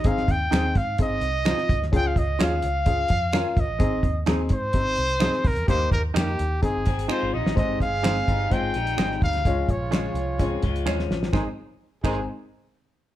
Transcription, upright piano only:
\new Staff \with { instrumentName = "Upright piano" } { \time 4/4 \key aes \major \tempo 4 = 128 <c' ees' aes'>8 r8 <c' ees' aes'>8 r8 <c' ees' aes'>8 r8 <c' ees' f'>8 r8 | <des' f' aes'>8 r8 <des' f' aes'>8 r8 <des' f' aes'>8 r8 <des' f' bes'>8 r8 | <c' ees' aes'>8 r8 <c' ees' aes'>8 r8 <c' ees' g'>8 r8 <c' ees' aes'>8 r8 | <bes ees' g'>8 r8 <bes ees' g'>8 r8 <c' ees' aes'>8 r8 <c' ees' g'>8 r8 |
<aes c' ees' c''>8 r8 <aes c' ees' c''>8 r8 <aes c' ees' c''>8 r8 <aes c' ees' c''>8 r8 | <aes des' f' des''>8 r8 <aes des' f' des''>8 r8 <aes des' f' des''>8 r8 <aes des' f' des''>8 r8 | <aes c' ees' c''>8 r4 <aes c' ees' c''>8 r2 | }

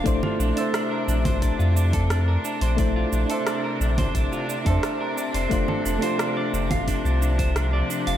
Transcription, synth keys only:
\new Staff \with { instrumentName = "Synth keys" } { \time 4/4 \key bes \lydian \tempo 4 = 88 <a d' e' c''>8. <d' c'' e''>2.~ <d' c'' e''>16 | <a d' e' c''>16 r8 <d' c'' e''>2 <d' c'' e''>4~ <d' c'' e''>16 | <a d' f' c''>8. <a d' f' c''>2.~ <a d' f' c''>16 | }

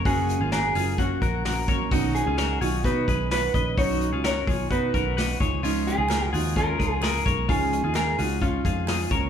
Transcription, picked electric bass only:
\new Staff \with { instrumentName = "Picked electric bass" } { \clef bass \time 4/4 \key cis \mixolydian \tempo 4 = 129 fis,,8. gis,,8. fis,,4 ais,,4. | b,,8. cis,8. b,,8 b,8 b,,4 ais,,8 | b,,8. cis,8. b,,8 b,8 b,,4 cis,8~ | cis,8. cis,8. dis,4 cis,4 b,,8 |
cis,8. dis,8. cis,4 eis,4 cis,8 | }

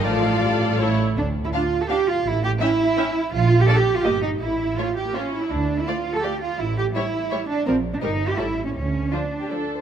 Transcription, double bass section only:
\new Staff \with { instrumentName = "Double bass section" } { \clef bass \time 3/4 \key d \minor \tempo 4 = 166 a,,2~ a,,8 r8 | d,4 r2 | a,,4 r2 | bes,,4 r4 g,,4 |
a,,4 r2 | d,4 r2 | a,,4 r2 | bes,,4 g,,4 a,,4 |
d,4 r2 | }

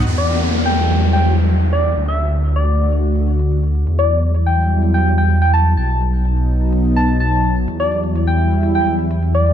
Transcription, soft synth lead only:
\new Staff \with { instrumentName = "Soft synth lead" } { \time 4/4 \key e \minor \tempo 4 = 126 r16 d''8 r8 g''8. r16 g''8 r8. d''8 | r16 e''8 r8 d''8. r2 | r16 d''8 r8 g''8. r16 g''8 g''8 g''16 a''8 | a''8 r2 a''8 a''8. r16 |
r16 d''8 r8 g''8. r16 g''8 r8. d''8 | }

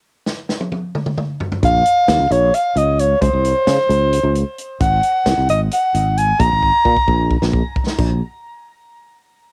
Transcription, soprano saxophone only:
\new Staff \with { instrumentName = "Soprano saxophone" } { \time 7/8 \key bes \minor \tempo 4 = 132 r2. r8 | f''4. des''8 f''8 ees''8 des''8 | c''2. r8 | ges''4. ees''8 ges''4 aes''8 |
bes''2~ bes''8 r4 | r2. r8 | }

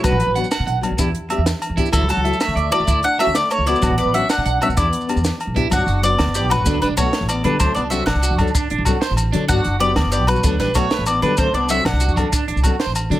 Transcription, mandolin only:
\new Staff \with { instrumentName = "Mandolin" } { \time 12/8 \key d \major \tempo 4. = 127 b'4 r1 r4 | a'8 a'4 e''4 d''4 fis''8 e''8 d''8 cis''8 d''8~ | d''8 d''8 e''8 fis''4 e''8 d''2 r4 | fis''4 d''4 d''8 b'4 b'8 cis''4 d''8 b'8 |
c''8 d''8 e''8 fis''4. r2. | fis''4 d''4 d''8 b'4 b'8 cis''4 d''8 b'8 | c''8 d''8 e''8 fis''4. r2. | }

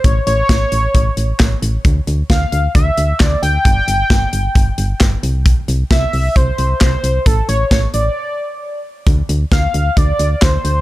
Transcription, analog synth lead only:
\new Staff \with { instrumentName = "Analog synth lead" } { \time 4/4 \key d \minor \tempo 4 = 133 cis''8 cis''2. r8 | r4 f''4 e''4 d''8 g''8~ | g''2.~ g''8 r8 | r4 e''4 c''4 c''4 |
a'8 cis''8 cis''8 d''2 r8 | r4 f''4 d''4 c''4 | }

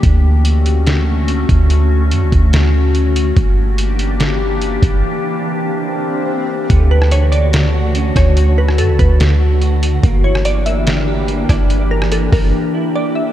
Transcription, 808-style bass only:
\new Staff \with { instrumentName = "808-style bass" } { \clef bass \time 4/4 \key d \major \tempo 4 = 144 d,2.~ d,8 d,8~ | d,4 fis,16 d,16 d,2~ d,8 | g,,2.~ g,,8 g,,8 | r1 |
d,2.~ d,8 d,8~ | d,4 fis,16 d,16 d,2~ d,8 | g,,2.~ g,,8 g,,8~ | g,,4. g,,8 r2 | }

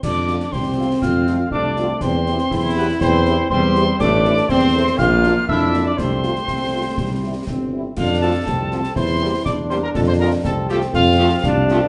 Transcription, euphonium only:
\new Staff \with { instrumentName = "Euphonium" } { \time 2/4 \key c \major \tempo 4 = 121 d'4 c'4 | f'4 d'4 | c'4. b8 | c'4 c'4 |
\key f \major d'4 c'4 | f'4 e'8. d'16 | c'2~ | c'4. r8 |
d'4 c'4 | e'4 d'4~ | d'4 c'4~ | c'4 d'4 | }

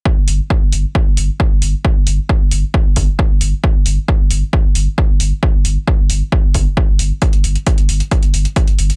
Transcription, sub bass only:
\new Staff \with { instrumentName = "Sub bass" } { \clef bass \time 4/4 \key c \minor \tempo 4 = 134 r16 g,,16 g,,16 r8 g,,16 g,,16 r8 g,,16 g,,16 r8 g,,16 g,,16 r16 | r16 g,,16 g,,16 r8 g,,16 g,,16 r8 g,,16 g,,16 r8 g,,16 g,,16 r16 | r16 g,,16 g,,16 r8 g,,16 g,,16 r8 g,,16 g,,16 r8 g,,16 g,,16 r16 | r16 g,,16 g,,16 r8 g,,16 g,,16 r8 g,,16 g,,16 r8 g,,16 g,,16 r16 |
r16 g,,16 g,,16 r8 g,,16 g,,16 r8 g,,16 g,,16 r8 g,,16 g,,16 r16 | }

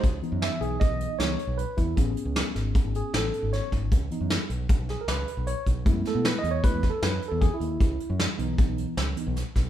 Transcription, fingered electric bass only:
\new Staff \with { instrumentName = "Fingered electric bass" } { \clef bass \time 5/4 \key cis \minor \tempo 4 = 154 cis,8 r16 fis,8 r16 b,,8 r16 b,,8 r16 cis,8 r16 b,,8 r16 e,8 | a,,8 r16 cis,8 r16 gis,,8 r16 gis,,8 r16 a,,8 r16 gis,,8 r16 gis,,8 | cis,8 r16 fis,8 r16 b,,8 r16 b,,8 r16 cis,8 r16 b,,8 r16 b,,8 | fis,8 r16 b,8 r16 e,8 r16 e,8 r16 fis,8 r16 e,8 r16 dis,8 |
cis,8 r16 fis,8 r16 b,,8 r16 b,,8 r16 cis,8 r16 b,,8 r16 b,,8 | }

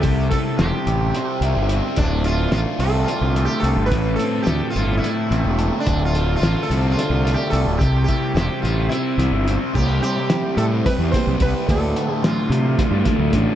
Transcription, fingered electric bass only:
\new Staff \with { instrumentName = "Fingered electric bass" } { \clef bass \time 7/8 \key d \minor \tempo 4 = 108 c,8 r8 e,,16 r16 a,,8 r8 c,16 g,,8 r16 | d,,4 a,,16 r16 c,8 r16 c,8 r16 c,16 g,,16 | a,,8 r8 d,16 r16 g,,8 r8 a,,16 e,,8 r16 | d,,4 a,,16 r16 c,8 r16 c,8 r16 c,16 d,,16 |
c,8 r8 e,,16 r16 a,,8 r8 c,16 g,,8 r16 | c,8 r4 a,8 r16 e,16 r16 c,16 c,16 r16 | d,8 r4 c8 r16 g,16 r16 d,16 a,,16 r16 | }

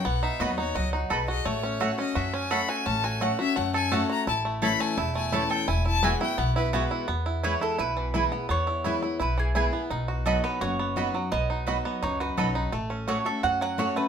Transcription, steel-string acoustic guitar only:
\new Staff \with { instrumentName = "Steel-string acoustic guitar" } { \time 4/4 \key e \major \tempo 4 = 170 << { r4 <fis b dis' fis'>8 <dis' fis'>8 r2 | r4 <a cis' fis'>8 <cis' fis'>8 r4 <a cis' fis'>4 | r4 <a cis' fis'>8 <cis' fis'>8 r4 <a cis' fis'>4 | r4 <e a cis' e'>4 r4 <e a cis' e'>4 |
r4 <e gis b fis'>8 <b fis'>8 r4 <e gis b fis'>4 | r4 <e gis b e'>4 r4 <e gis b e'>8 <b e'>8 | r4 <e gis b e'>8 <b e'>8 r4 <e gis b e'>8 <b e'>8 | r4 <fis b dis' fis'>4 r4 <fis b dis' fis'>8 <dis' fis'>8 |
r4 <fis b dis' fis'>4 r4 <fis b dis' fis'>8 <dis' fis'>8 | r4 <a cis' fis'>8 <cis' fis'>8 r4 <a cis' fis'>8 <cis' fis'>8 | } \\ { b,2 fis4 gis'4 | a2 cis'2 | a2 cis'2 | a,2 e,2 |
e,2 b,2 | e,2 b,2 | e,2 b,2 | b,2 fis,2 |
b,2 fis,2 | a2 cis'2 | } >> }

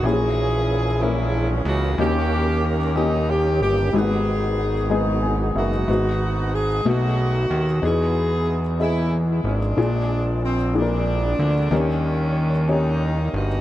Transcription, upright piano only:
<<
  \new Staff \with { instrumentName = "Upright piano" } { \time 6/8 \key gis \minor \tempo 4. = 62 <ais cis' e' g' gis'>4 r8 <ais cis' e' ais'>4 r8 | <ais cis' dis' fis' g'>4 r8 <ais cis' dis' g'>4 r8 | <gis ais b dis' fis'>4 r8 <gis b dis' gis'>4 r8 | <gis b dis' fis'>4 r8 <a b dis' fis'>4 r8 |
<b dis' gis'>4 r8 <b e' gis' dis''>4 r8 | <ais d' eis' gis'>4 r8 <ais d' eis' gis' ais'>4 r8 | <cis' dis' g' ais'>4 r8 <cis' dis' g' cis''>4 r8 | }
  \new Staff \with { instrumentName = "Upright piano" } { \clef bass \time 6/8 \key gis \minor ais,4. r4. | dis4. r4. | gis,4. r8 gis''8 e''8 | gis,4. b,4. |
e4. r4. | ais,4. r4. | dis4. r4. | }
>>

